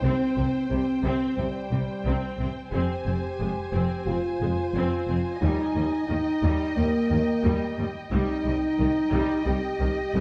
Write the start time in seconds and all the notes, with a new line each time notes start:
Already playing: C5 G5
0.02 C2 C3 C4
0.36 C2 C3 C4
0.70 C2 C3 G3 C4
1.03 C2 C3 C4
1.37 C2 C3 G3 C4
1.71 C2 C3 G3
2.05 C2 C3 C4
2.39 C2 C3 C4
2.72 F1 F2 C4 G4 C5 G#5
3.06 F1 F2 C4
3.40 F1 F2 G#3
3.74 F1 F2 C4
4.07 F1 F2 C4 F4
4.41 F1 F2 G#3
4.75 F1 F2 C4
5.09 F1 F2 C4
5.42 D#2 G3 D#4 D#5
5.76 D#2 G3
6.08 D#2 D#3 D#4 G5
6.43 D#2 G3
6.75 D#2 G3 A#3
7.10 D#2 D#3
7.43 D#2 G3
7.78 D#2 G3
8.11 C2 G3 D#4 D#5 G5
8.46 C2 G3
8.79 C2 D#3
9.13 C2 G3
9.46 C2 G3 G4
9.80 C2 D#3
10.14 C2 G3